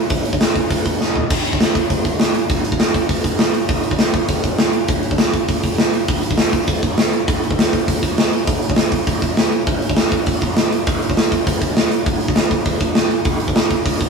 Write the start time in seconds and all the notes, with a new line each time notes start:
0.10 kick, open hi-hat
0.25 open hi-hat
0.33 kick
0.41 snare, open hi-hat
0.56 kick, open hi-hat
0.71 kick, open hi-hat
0.86 kick, open hi-hat
1.01 snare
1.16 floor tom
1.30 kick, open hi-hat, crash
1.45 open hi-hat
1.53 kick
1.60 snare, open hi-hat
1.75 kick, open hi-hat
1.90 kick, open hi-hat
2.05 kick, open hi-hat
2.20 snare, open hi-hat
2.35 open hi-hat
2.50 kick, open hi-hat
2.65 open hi-hat
2.72 kick
2.80 snare, open hi-hat
2.94 kick, open hi-hat
3.09 kick, open hi-hat
3.24 kick, open hi-hat
3.39 snare, open hi-hat
3.54 open hi-hat
3.69 kick, open hi-hat
3.84 open hi-hat
3.91 kick
3.99 snare, open hi-hat
4.13 kick, open hi-hat
4.28 kick, open hi-hat
4.44 kick, open hi-hat
4.58 snare, open hi-hat
4.73 open hi-hat
4.88 kick, open hi-hat
5.03 open hi-hat
5.11 kick
5.18 snare, open hi-hat
5.33 kick, open hi-hat
5.48 kick, open hi-hat
5.63 kick, open hi-hat
5.78 snare, open hi-hat
5.94 open hi-hat
6.08 kick, open hi-hat
6.23 open hi-hat
6.31 kick
6.38 snare, open hi-hat
6.53 kick, open hi-hat
6.67 kick, open hi-hat
6.83 kick, open hi-hat
6.98 snare, open hi-hat
7.13 open hi-hat
7.28 kick, open hi-hat
7.43 open hi-hat
7.51 kick
7.59 snare, open hi-hat
7.73 kick, open hi-hat
7.88 kick, open hi-hat
8.03 kick, open hi-hat
8.18 snare, open hi-hat
8.33 open hi-hat
8.47 kick, open hi-hat
8.62 open hi-hat
8.70 kick
8.76 snare, open hi-hat
8.92 kick, open hi-hat
9.07 kick, open hi-hat
9.22 kick, open hi-hat
9.37 snare, open hi-hat
9.52 open hi-hat
9.67 kick, open hi-hat
9.82 open hi-hat
9.90 kick
9.96 snare, open hi-hat
10.12 kick, open hi-hat
10.26 kick, open hi-hat
10.41 kick, open hi-hat
10.57 snare, open hi-hat
10.72 open hi-hat
10.87 kick, open hi-hat
11.02 open hi-hat
11.10 kick
11.17 snare, open hi-hat
11.32 kick, open hi-hat
11.47 kick, open hi-hat
11.62 kick, open hi-hat
11.77 snare, open hi-hat
11.92 open hi-hat
12.06 kick, open hi-hat
12.21 open hi-hat
12.28 kick
12.36 snare, open hi-hat
12.51 kick, open hi-hat
12.66 kick, open hi-hat
12.80 kick, open hi-hat
12.95 snare, open hi-hat
13.11 open hi-hat
13.25 kick, open hi-hat
13.40 open hi-hat
13.48 kick
13.56 snare, open hi-hat
13.71 kick, open hi-hat
13.86 kick, open hi-hat
14.01 kick, open hi-hat